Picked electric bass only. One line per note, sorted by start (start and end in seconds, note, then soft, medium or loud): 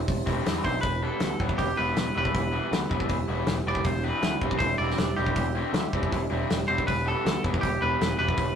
0.08 0.21 E1 medium
0.27 0.40 E1 medium
0.47 0.59 E2 medium
0.65 0.77 B1 medium
0.83 1.09 E1 medium
1.21 1.34 D2 medium
1.41 1.54 E1 medium
1.59 1.72 E1 medium
1.79 1.92 E1 medium
1.96 2.10 E1 medium
2.16 2.29 E1 medium
2.34 2.60 E1 medium
2.71 2.85 D2 medium
2.91 3.04 E1 medium
3.09 3.23 E1 medium
3.28 3.42 E1 medium
3.47 3.60 E1 medium
3.66 3.79 E1 medium
3.85 4.11 E1 medium
4.23 4.36 D2 medium
4.42 4.55 E1 medium
4.60 4.74 E1 medium
4.79 4.92 E1 medium
4.99 5.12 E1 medium
5.18 5.31 E1 medium
5.37 5.62 E1 medium
5.73 5.86 D2 medium
5.93 6.06 E1 medium
6.13 6.25 E1 medium
6.31 6.44 E1 medium
6.51 6.64 E1 medium
6.69 6.82 E1 medium
6.88 7.14 E1 medium
7.25 7.38 D2 medium
7.44 7.57 E1 medium
7.64 7.76 E1 medium
7.82 7.95 E1 medium
8.01 8.14 E1 medium
8.19 8.32 E1 medium
8.38 8.55 E1 medium